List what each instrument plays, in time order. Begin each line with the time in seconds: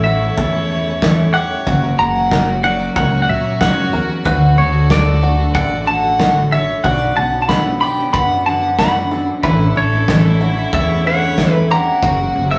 Already playing: upright bass A1, string section E3 A3 E4
0.04 twelve-string acoustic guitar A3 C#4 E4 A4, five-string banjo F#4, fiddle C#5, clean electric guitar E5
0.21 twelve-string acoustic guitar A3 C#4 E4 A4
0.37 upright bass E2, five-string banjo A4, kick
0.54 twelve-string acoustic guitar A3 C#4 E4 A4
0.70 twelve-string acoustic guitar A3 C#4 E4 A4
0.87 twelve-string acoustic guitar A3 C#4 E4 A4
1.02 twelve-string acoustic guitar A2 E3 A3 C#4 E4 A4, five-string banjo E4, kick, snare
1.34 twelve-string acoustic guitar A3 C#4 E4 A4, five-string banjo G4, fiddle C#5, clean electric guitar F#5
1.50 twelve-string acoustic guitar A3 C#4 E4 A4
1.67 upright bass F#1, twelve-string acoustic guitar F#2 C#3 F#3 C#4 F#4 A#4, string section F#3 A#3 F#4, five-string banjo F#4, kick
1.82 twelve-string acoustic guitar F#3 C#4 F#4 A#4
1.98 upright bass F#1, fiddle F#5, clean electric guitar A#5
2.14 twelve-string acoustic guitar F#3 C#4 F#4 A#4
2.30 twelve-string acoustic guitar F#2 C#3 F#3 C#4 F#4 A#4, five-string banjo A#4, kick, snare
2.63 twelve-string acoustic guitar F#3 C#4 F#4 A#4, five-string banjo F#4, fiddle D5, clean electric guitar F#5
2.79 twelve-string acoustic guitar F#3 C#4 F#4 A#4
2.96 upright bass C#2, five-string banjo A#4, fiddle C#5, clean electric guitar F#5, kick
3.11 twelve-string acoustic guitar F#3 C#4 F#4 A#4
3.22 fiddle D5, clean electric guitar F#5
3.27 upright bass A#2, twelve-string acoustic guitar F#3 C#4 F#4 A#4, fiddle C#5, clean electric guitar E5
3.43 twelve-string acoustic guitar F#3 C#4 F#4 A#4
3.60 twelve-string acoustic guitar F#2 C#3 F#3 C#4 F#4 A#4, upright bass F#2, five-string banjo F#4, fiddle C#5, clean electric guitar F#5, kick, snare
3.92 upright bass E2, twelve-string acoustic guitar F#3 C#4 F#4 A#4, five-string banjo A#4
4.08 twelve-string acoustic guitar F#3 C#4 F#4 A#4
4.24 upright bass D2, twelve-string acoustic guitar D3 F#3 A3 F#4 A4, string section D3 A3, fiddle F#4, five-string banjo F#4, clean electric guitar B4, kick
4.40 twelve-string acoustic guitar A3 F#4 A4
4.58 upright bass D2, fiddle A4, clean electric guitar C#5
4.72 twelve-string acoustic guitar A3 F#4 A4
4.88 twelve-string acoustic guitar D3 F#3 A3 F#4 A4, fiddle A4, five-string banjo A4, clean electric guitar D5, kick, snare
5.21 twelve-string acoustic guitar F#3 A3 F#4 A4, five-string banjo F#4
5.37 twelve-string acoustic guitar A3 F#4 A4
5.54 upright bass A1, five-string banjo A4, fiddle D5, clean electric guitar F#5, kick
5.70 twelve-string acoustic guitar A3 F#4 A4
5.86 twelve-string acoustic guitar F#3 A3 F#4 A4, fiddle F#5, clean electric guitar A5
6.02 twelve-string acoustic guitar A3 F#4 A4
6.18 twelve-string acoustic guitar D3 F#3 A3 F#4 A4, five-string banjo F#4, kick, snare
6.51 twelve-string acoustic guitar F#3 A3 F#4 A4, five-string banjo A4, fiddle C#5, clean electric guitar E5
6.68 twelve-string acoustic guitar A3 F#4 A4
6.84 upright bass B1, twelve-string acoustic guitar B2 F#3 C#4 D4 F#4, string section D3 B3, five-string banjo F#4, fiddle D5, clean electric guitar F#5, kick
7.00 twelve-string acoustic guitar C#4 D4 F#4
7.17 upright bass B1, fiddle F#5, clean electric guitar A5
7.33 twelve-string acoustic guitar C#4 D4 F#4
7.42 fiddle F#5, clean electric guitar A5
7.49 twelve-string acoustic guitar B2 F#3 C#4 D4 F#4, five-string banjo A4, fiddle F#5, clean electric guitar B5, kick, snare
7.81 twelve-string acoustic guitar F#3 C#4 D4 F#4, five-string banjo G4, fiddle G5, clean electric guitar B5
7.98 twelve-string acoustic guitar C#4 D4 F#4
8.13 upright bass F#2, five-string banjo B4, fiddle F#5, clean electric guitar B5, kick
8.31 twelve-string acoustic guitar C#4 D4 F#4
8.46 twelve-string acoustic guitar F#3 C#4 D4 F#4, fiddle F#5, clean electric guitar A5
8.63 twelve-string acoustic guitar C#4 D4 F#4
8.79 twelve-string acoustic guitar B2 F#3 C#4 D4 F#4, five-string banjo F#4, fiddle F#5, clean electric guitar B5, kick, snare
9.11 twelve-string acoustic guitar F#3 C#4 D4 F#4, five-string banjo A4
9.43 upright bass A1, twelve-string acoustic guitar A2 E3 A3 C#4 E4 A4, string section E3 A3 E4, five-string banjo E4, fiddle E4, clean electric guitar B4, kick
9.60 twelve-string acoustic guitar A3 C#4 E4 A4
9.76 upright bass A1, fiddle A4, clean electric guitar C#5
9.92 twelve-string acoustic guitar A3 C#4 E4 A4
10.08 twelve-string acoustic guitar A2 E3 A3 C#4 E4 A4, five-string banjo A4, kick, snare
10.40 twelve-string acoustic guitar A3 C#4 E4 A4, five-string banjo F#4
10.57 twelve-string acoustic guitar A3 C#4 E4 A4
10.73 upright bass E2, five-string banjo A4, fiddle C#5, clean electric guitar E5, kick
10.90 twelve-string acoustic guitar A3 C#4 E4 A4
11.05 twelve-string acoustic guitar A3 C#4 E4 A4, fiddle C#5, clean electric guitar F#5
11.22 twelve-string acoustic guitar A3 C#4 E4 A4
11.38 twelve-string acoustic guitar A2 E3 A3 C#4 E4 A4, five-string banjo E4, kick, snare
11.51 fiddle B4, clean electric guitar E5
11.70 twelve-string acoustic guitar A3 C#4 E4, five-string banjo G4, fiddle F#5, clean electric guitar A#5
12.02 upright bass F#1, twelve-string acoustic guitar F#2 C#3 F#3 C#4 F#4 A#4, string section C#3 F#3 A#3 F#4, five-string banjo F#4, kick
12.20 twelve-string acoustic guitar F#3 C#4 F#4 A#4
12.36 upright bass F#1
12.51 twelve-string acoustic guitar F#3 C#4 F#4 A#4, fiddle C#5, clean electric guitar E5